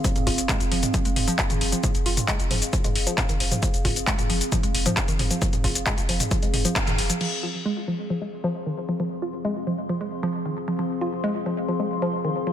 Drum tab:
CC |----------------|----------------|----------------|----------------|
HH |xxoxxxoxxxoxxxox|xxoxxxoxxxoxxxox|xxoxxxoxxxoxxxox|xxoxxxoxxxoxxxox|
SH |xx-xxx-xxx-xxx-x|xx-xxx-xxx-xxx-x|xx-xxx-xxx-xxx-x|xx-xxx-xxx-xxx-x|
CP |----x-------x---|----x-------x---|----x-------x---|----x-------x---|
T2 |-o--o--o--o--o--|o--o--o--o--o--o|--o--o--o--o--o-|-o--o--o--o--o--|
BD |o-o-o---o---o---|o---o---o---o---|o-o-o---o---o---|o-o-o---o---o---|

CC |x---------------|----------------|----------------|
HH |----------------|----------------|----------------|
SH |----------------|----------------|----------------|
CP |----------------|----------------|----------------|
T2 |----------------|----------------|----------------|
BD |----------------|----------------|----------------|